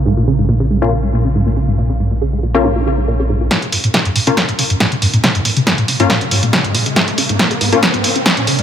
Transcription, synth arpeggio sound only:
X:1
M:4/4
L:1/16
Q:1/4=139
K:Bbm
V:1 name="Synth arpeggio sound" clef=bass
A,, B,, D, A,, B,, D, A,, B,, D, A,, B,, D, A,, B,, D, A,, | B,, D, A,, B,, D, A,, B,, D, A,, B,, D, A,, B,, D, A,, B,, | B,, D, A,, B,, D, A,, B,, D, A,, B,, D, A,, B,, D, A,, B,, | D, A,, B,, D, A,, B,, D, A,, B,, D, A,, B,, D, A,, B,, D, |
A,, B,, D, A,, B,, D, A,, B,, D, A,, B,, D, A,, B,, D, A,, |]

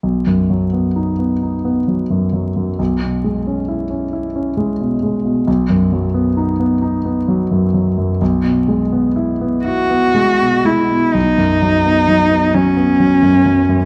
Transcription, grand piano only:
X:1
M:6/8
L:1/16
Q:3/8=44
K:B
V:1 name="Grand piano" clef=bass
B,,, F,, F, B, D B, D B, F, F,, F, F,, | B,,, B,, G, C E C E C G, B,, G, B,, | B,,, F,, F, B, D B, D B, F, F,, F, F,, | B,,, B,, G, B, E B, E B, G, B,, G, B,, |
B,,, F,, F, B, F, B, F, B, F, F,, F, F,, |]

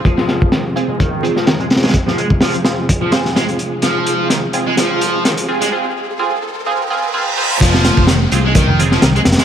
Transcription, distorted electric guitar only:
X:1
M:4/4
L:1/16
Q:"Swing 16ths" 1/4=127
K:Fm
V:1 name="Distorted electric guitar" clef=bass
F,4 E, z2 A, E, E, z F, E, A, z A, | z F, A, z F, z4 F, C z A, z3 | F,4 E, z2 A, F,4 E, z2 A, | z16 |
F,4 E, z2 A, E, E, z F, E, A, z A, |]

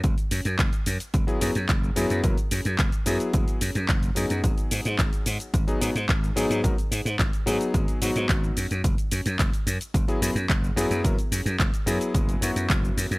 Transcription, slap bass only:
X:1
M:4/4
L:1/16
Q:1/4=109
K:F#mix
V:1 name="Slap bass" clef=bass
F,,, z F,, F,, F,,, z F,, z F,,, z F,, F,, F,,, z F,, F,, | F,,, z F,, F,, F,,, z F,, z F,,, z F,, F,, F,,, z F,, F,, | G,,, z G,, G,, G,,, z G,, z G,,, z G,, G,, G,,, z G,, G,, | G,,, z G,, G,, G,,, z G,, z G,,, z G,, G,, G,,, z F,, F,, |
F,,, z F,, F,, F,,, z F,, z F,,, z F,, F,, F,,, z F,, F,, | F,,, z F,, F,, F,,, z F,, z F,,, z F,, F,, F,,, z F,, F,, |]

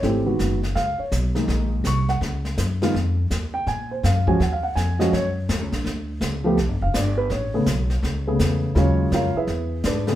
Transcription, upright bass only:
X:1
M:4/4
L:1/8
Q:"Swing" 1/4=165
K:Ebdor
V:1 name="Upright bass" clef=bass
A,,,2 G,,,2 D,, z _C,,2 | B,,,2 C,,2 D,,2 G,,2 | F,,2 E,,2 B,,2 G,,2 | E,,2 F,,2 G,,2 (3E,, D,, B,,, |
=D,,2 _D,,2 (3=B,,, =G,,, F,,, G,,,2 | =A,,,2 =B,,,2 ^C,,2 =E,,2 | E,,2 F,, z =E,,2 ^G,,2 |]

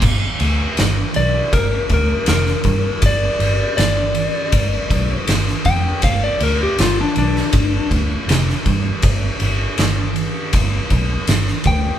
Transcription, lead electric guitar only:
X:1
M:4/4
L:1/16
Q:1/4=80
K:C
V:1 name="Lead electric guitar"
z6 d2 _B2 B2 B4 | d4 d8 z2 g2 | f d _B G F D D4 z6 | z12 z2 g2 |]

